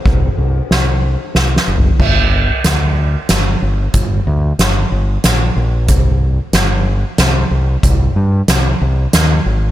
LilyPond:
<<
  \new Staff \with { instrumentName = "Fingered electric bass" } { \clef bass \time 3/4 \key g \phrygian \tempo 4 = 93 c,8 c,8 c,4 c,8 fis,,8 | g,,4 d,4 g,,8 g,,8 | g,,8 d,8 g,,8 g,,8 bes,,8 bes,,8 | c,4 g,,4 c,8 c,8 |
c,8 g,8 c,8 c,8 ees,8 aes,,8 | }
  \new DrumStaff \with { instrumentName = "Drums" } \drummode { \time 3/4 <bd cymr>8 cymr8 <cymr sn>4 \tuplet 3/2 { sn8 sn8 tomfh8 } | <cymc bd>4 <hh sn>4 <hh sn>4 | <hh bd>4 <hh sn>4 <hh sn>4 | <hh bd>4 <hh sn>4 <hh sn>4 |
<hh bd>4 <hh sn>4 <hh sn>4 | }
>>